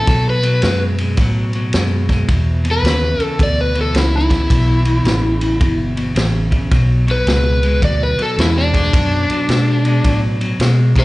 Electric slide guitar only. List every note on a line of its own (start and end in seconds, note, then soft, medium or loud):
0.00 0.28 A4 medium
0.30 0.82 B4 loud
2.71 3.23 B4 loud
3.23 3.40 A4 loud
3.43 3.59 D5 medium
3.61 3.77 B4 medium
3.81 3.96 A4 medium
3.98 4.14 E4 medium
4.18 5.77 E4 loud
7.11 7.81 B4 loud
7.84 8.01 D5 medium
8.03 8.20 B4 medium
8.22 8.38 A4 loud
8.40 8.57 E4 loud
8.58 10.19 D4 medium
10.99 11.05 A4 medium
10.99 11.05 D5 loud